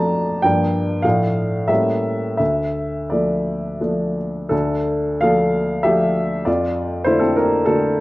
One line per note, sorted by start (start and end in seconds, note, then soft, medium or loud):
0.00 0.47 F2 soft
0.00 0.44 F3 soft
0.00 0.46 A3 soft
0.00 0.45 D4 soft
0.00 0.47 D5 medium
0.00 0.44 A5 medium
0.00 0.46 A#5 medium
0.42 1.02 G2 medium
0.42 1.00 F3 soft
0.42 1.01 A#3 soft
0.42 1.01 D4 soft
0.42 1.03 G5 medium
1.03 1.67 A2 soft
1.03 1.65 F3 soft
1.03 1.66 A3 soft
1.03 1.66 D4 soft
1.03 1.69 F5 medium
1.68 2.37 A2 soft
1.68 2.35 G3 soft
1.68 2.36 A#3 soft
1.68 2.36 C#4 soft
1.68 2.36 E5 medium
2.37 3.10 D2 soft
2.37 3.11 E5 medium
3.10 3.78 F3 soft
3.10 3.78 A3 soft
3.10 3.78 D4 soft
3.10 4.16 D5 soft
3.81 4.47 F3 soft
3.81 4.47 A3 soft
3.81 4.48 D4 soft
4.49 5.21 D2 soft
4.49 5.19 D4 soft
4.49 5.20 A4 medium
5.21 5.81 F3 soft
5.21 5.81 A3 soft
5.21 5.81 D4 soft
5.21 5.81 A4 medium
5.21 5.84 F5 medium
5.83 6.42 F3 soft
5.83 6.43 A3 soft
5.83 6.43 D4 soft
5.83 6.42 G4 soft
5.83 6.46 E5 medium
6.45 7.04 F2 soft
6.45 7.02 F4 soft
6.45 7.05 D5 medium
7.04 7.62 D3 soft
7.04 7.63 A3 soft
7.04 7.35 D4 soft
7.04 7.20 E4 medium
7.04 7.20 C5 medium
7.19 7.35 C4 soft
7.19 7.35 A4 medium
7.36 7.65 D4 soft
7.36 7.66 A#4 medium
7.66 8.00 D3 soft
7.66 8.00 A3 soft
7.66 8.00 D4 soft
7.66 8.00 A4 medium